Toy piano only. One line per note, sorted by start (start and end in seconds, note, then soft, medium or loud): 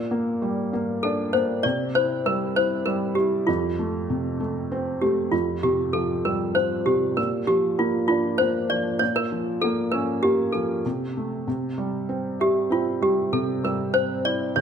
0.00 0.37 A#4 medium
1.03 1.32 A4 medium
1.33 1.65 C5 medium
1.63 1.92 D5 medium
1.95 2.24 C5 medium
2.26 2.54 A#4 medium
2.56 2.88 C5 medium
2.86 3.18 A#4 medium
3.15 3.45 G4 medium
3.47 4.67 F4 medium
5.02 5.16 G4 medium
5.32 5.61 F4 medium
5.63 5.96 G4 medium
5.93 6.26 A4 medium
6.25 6.54 A#4 medium
6.55 6.87 C5 medium
6.86 7.18 G4 medium
7.17 7.46 A#4 medium
7.47 7.80 G4 medium
7.79 8.07 F4 medium
8.08 8.40 F4 medium
8.38 8.71 C5 medium
8.70 8.99 D5 medium
8.99 9.14 C#5 medium
9.16 9.63 A#4 medium
9.62 9.93 A4 medium
9.92 10.24 A#4 medium
10.23 10.55 G4 medium
10.52 11.11 A4 medium
12.41 12.73 G4 medium
12.72 13.04 F4 medium
13.03 13.31 G4 medium
13.33 13.47 A4 medium
13.65 13.93 A#4 medium
13.94 14.23 C5 medium
14.25 14.57 D5 medium
14.56 14.61 C#5 medium